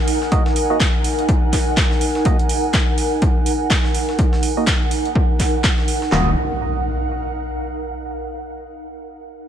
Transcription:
Already playing: analog synth pad D#4 A#4 G#5, ambient pad D#4 A#4 F#5
0.08 closed hi-hat, open hi-hat
0.22 snare
0.32 synth stab A#3 D#4 F#4 D#5, kick, closed hi-hat
0.46 snare
0.56 closed hi-hat, open hi-hat
0.70 synth stab A#3 D#4 F#4 D#5
0.80 kick, snare, clap, closed hi-hat
1.04 closed hi-hat, open hi-hat
1.19 closed hi-hat
1.29 kick, closed hi-hat
1.53 kick, clap, closed hi-hat, open hi-hat
1.77 kick, snare, clap, closed hi-hat
1.91 snare
2.01 closed hi-hat, open hi-hat
2.15 snare
2.25 synth stab A#3 D#4 F#4 D#5, kick, closed hi-hat
2.39 closed hi-hat
2.49 closed hi-hat, open hi-hat
2.73 kick, snare, clap, closed hi-hat
2.98 closed hi-hat, open hi-hat
3.22 kick, closed hi-hat
3.46 closed hi-hat, open hi-hat
3.70 kick, snare, clap, open hi-hat
3.84 snare
3.94 closed hi-hat, open hi-hat
4.09 snare
4.19 kick, closed hi-hat
4.33 snare
4.43 closed hi-hat, open hi-hat
4.57 synth stab A#3 D#4 F#4 D#5
4.67 kick, snare, clap, closed hi-hat
4.91 closed hi-hat, open hi-hat
5.05 closed hi-hat
5.15 kick
5.40 kick, clap, closed hi-hat, open hi-hat
5.64 kick, snare, clap, closed hi-hat
5.78 snare
5.88 closed hi-hat, open hi-hat
6.02 snare
6.12 wobble bass D#1, synth stab A#3 D#4 F#4 D#5, ambient pad D#4, snare, clap, impact
6.21 ambient pad A#4
6.28 ambient pad F5
6.34 ambient pad F#5

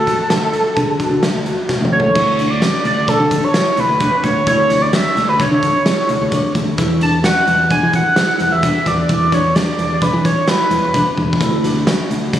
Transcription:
Already playing: analog synth lead A4
0.07 kick, snare, closed hi-hat
0.30 fingered electric bass D2, vibraphone A4, snare, closed hi-hat
0.53 closed hi-hat
0.77 fingered electric bass D3, vibraphone G#4, kick, closed hi-hat
1.00 vibraphone F#4, kick, closed hi-hat
1.11 fingered electric bass D3
1.23 snare, closed hi-hat
1.34 fingered electric bass D2
1.46 vibraphone F#4, closed hi-hat
1.69 kick, snare
1.81 fingered electric bass D2, mid tom
1.92 vibraphone A4, analog synth lead C#5
2.00 floor tom
2.15 fingered electric bass D2, vibraphone E4, kick, crash
2.39 vibraphone D4, closed hi-hat
2.50 analog synth lead D5
2.62 vibraphone C#4, snare, closed hi-hat
2.85 fingered electric bass D2, analog synth lead D5, closed hi-hat
3.08 vibraphone D4, analog synth lead A4, kick, closed hi-hat
3.20 fingered electric bass D3
3.31 kick, closed hi-hat
3.44 analog synth lead C#5
3.54 vibraphone E4, snare, closed hi-hat
3.77 fingered electric bass D2, analog synth lead B4, closed hi-hat
3.89 fingered electric bass D2
4.00 vibraphone D4, kick, closed hi-hat
4.24 fingered electric bass D2, analog synth lead C#5, kick, closed hi-hat
4.47 fingered electric bass D2, vibraphone E4, analog synth lead C#5, kick, closed hi-hat
4.70 vibraphone D4, snare, closed hi-hat
4.82 analog synth lead D5
4.92 vibraphone C#4, analog synth lead E5, snare, closed hi-hat
5.17 fingered electric bass D2, snare, closed hi-hat
5.29 analog synth lead B4
5.39 vibraphone D4, analog synth lead C#5, kick, snare, closed hi-hat
5.52 fingered electric bass D3
5.63 kick, closed hi-hat
5.85 vibraphone E4, snare, closed hi-hat
6.09 fingered electric bass D2, closed hi-hat
6.21 fingered electric bass D2
6.32 vibraphone D4, kick, closed hi-hat
6.55 fingered electric bass D2, kick, closed hi-hat
6.78 fingered electric bass E2, vibraphone E4, kick, closed hi-hat
7.01 vibraphone D4, analog synth lead A5, closed hi-hat
7.24 vibraphone C#4, analog synth lead F#5, snare, closed hi-hat
7.47 fingered electric bass E2, closed hi-hat
7.70 vibraphone D4, analog synth lead G#5, kick, closed hi-hat
7.83 fingered electric bass E3
7.93 analog synth lead F#5, kick, closed hi-hat
8.16 vibraphone E4, snare, closed hi-hat
8.39 fingered electric bass E2, closed hi-hat
8.44 analog synth lead F#5
8.52 fingered electric bass E2, analog synth lead E5
8.63 vibraphone D4, kick, snare, closed hi-hat
8.86 fingered electric bass E2, analog synth lead D5, kick, snare, closed hi-hat
9.09 fingered electric bass E2, vibraphone E4, kick, closed hi-hat
9.32 vibraphone D4, analog synth lead C#5, kick, snare, closed hi-hat
9.55 vibraphone D4, analog synth lead D5, snare, closed hi-hat
9.79 fingered electric bass E2, closed hi-hat
10.01 vibraphone D4, analog synth lead B4, kick, closed hi-hat
10.13 fingered electric bass E3
10.25 analog synth lead C#5, kick, snare, closed hi-hat
10.48 vibraphone E4, analog synth lead B4, snare, closed hi-hat
10.71 fingered electric bass E2, closed hi-hat
10.82 fingered electric bass E2
10.94 vibraphone D4, kick, closed hi-hat
11.18 fingered electric bass E2, kick
11.33 kick
11.40 fingered electric bass D2, vibraphone E4, kick, closed hi-hat
11.63 vibraphone D4, snare, closed hi-hat
11.87 vibraphone C#4, snare, closed hi-hat
12.11 fingered electric bass D2, closed hi-hat
12.33 vibraphone D4, kick, snare, closed hi-hat

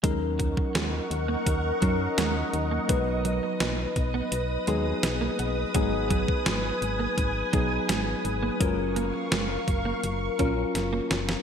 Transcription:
0.03 fm bass D#2, tine electric piano F#3 C#4 D#4 A#4, clean electric guitar G#3, string machine A#4 D#5 F#5 C#6, kick, closed hi-hat
0.39 clean electric guitar F#3, kick, closed hi-hat
0.57 muted clean electric guitar stroke, kick
0.75 fm bass D#2, clean electric guitar G#3, snare, closed hi-hat
0.93 muted clean electric guitar stroke
1.11 fm bass D#2, closed hi-hat
1.28 clean electric guitar A#3
1.46 fm bass D#2, kick, closed hi-hat
1.82 fm bass F#2, tine electric piano F#3 C#4 D#4 A#4, clean electric guitar F#3, kick, closed hi-hat
2.18 fm bass D#2, clean electric guitar G#3, snare, closed hi-hat
2.53 fm bass D#2, muted clean electric guitar stroke, closed hi-hat
2.71 clean electric guitar A#3
2.88 fm bass B1, tine electric piano F#3 B3 D#4 B4, clean electric guitar G#3, string machine B4 D#6, kick, closed hi-hat
3.25 clean electric guitar F#3, closed hi-hat
3.43 muted clean electric guitar stroke
3.60 fm bass B1, clean electric guitar A#3, snare, closed hi-hat
3.78 muted clean electric guitar stroke
3.96 fm bass B1, kick, closed hi-hat
4.14 clean electric guitar B3
4.32 fm bass B1, closed hi-hat
4.67 fm bass D#2, tine electric piano F#3 B3 D#4 G#4, clean electric guitar G#3, closed hi-hat
5.03 fm bass B1, muted clean electric guitar stroke, snare, closed hi-hat
5.21 clean electric guitar A#3
5.39 fm bass B1, clean electric guitar B3, closed hi-hat
5.74 fm bass G#1, tine electric piano F#3 B3 D#4 G#4, clean electric guitar G#3, string machine G#5, kick, closed hi-hat
6.10 clean electric guitar F#3, kick, closed hi-hat
6.28 muted clean electric guitar stroke, kick
6.46 fm bass G#1, clean electric guitar G#3, snare, closed hi-hat
6.64 muted clean electric guitar stroke
6.82 fm bass G#1, closed hi-hat
6.99 clean electric guitar A#3
7.18 fm bass G#1, kick, closed hi-hat
7.53 fm bass B1, tine electric piano F#3 B3 D#4 G#4, clean electric guitar F#3, kick, closed hi-hat
7.89 fm bass G#1, clean electric guitar G#3, snare, closed hi-hat
8.25 fm bass G#1, muted clean electric guitar stroke, closed hi-hat
8.43 clean electric guitar A#3
8.60 fm bass F#1, tine electric piano F#3 C#4 F4 A#4, clean electric guitar G#3, string machine A#4 F5 C#6, kick, closed hi-hat
8.96 clean electric guitar A#3, closed hi-hat
9.14 muted clean electric guitar stroke
9.32 fm bass F#1, clean electric guitar G#3, snare, closed hi-hat
9.50 muted clean electric guitar stroke
9.68 fm bass F#1, kick, closed hi-hat
9.85 clean electric guitar A#3
10.04 fm bass F#1, closed hi-hat
10.39 fm bass A#1, tine electric piano F#3 C#4 F4 A#4, clean electric guitar C#4, kick, closed hi-hat
10.75 fm bass F#1, muted clean electric guitar stroke, snare, closed hi-hat
10.93 clean electric guitar A#3
11.11 fm bass F#1, clean electric guitar C#4, snare, closed hi-hat
11.29 snare

